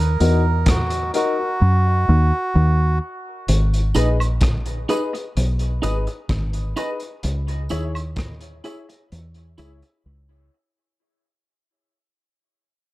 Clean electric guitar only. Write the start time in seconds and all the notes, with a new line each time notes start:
3.95 D#4 G#4 B4 D#5
4.89 D#4 G#4 B4 D#5
5.13 muted clean electric guitar stroke
5.82 D#4 G#4 B4 D#5
6.07 muted clean electric guitar stroke
6.76 D#4 G#4 B4 D#5
7.70 E4 G#4 C#5 E5
8.64 E4 G#4 C#5 E5
8.89 muted clean electric guitar stroke
9.58 E4 G#4 C#5 E5
9.83 muted clean electric guitar stroke